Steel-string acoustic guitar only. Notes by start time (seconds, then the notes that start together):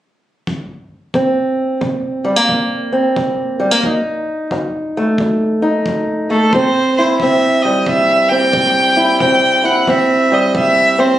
1.14 C3 C4
1.81 C3
2.25 G3
2.36 A#3
2.49 C3
2.92 C4
3.16 C3
3.60 G3
3.71 A#3
3.85 F2 D#4
4.52 F2
4.97 A3
5.20 F2
5.62 D#4
5.88 F2
6.30 A3
6.54 C3 C4
6.99 E4
7.22 C3 C4
7.65 G3
7.87 C3
8.31 C4
8.53 C3
8.97 E4
9.20 C3 C4
9.64 E4
9.88 C3 C4
10.32 G3
10.54 C3
10.99 C4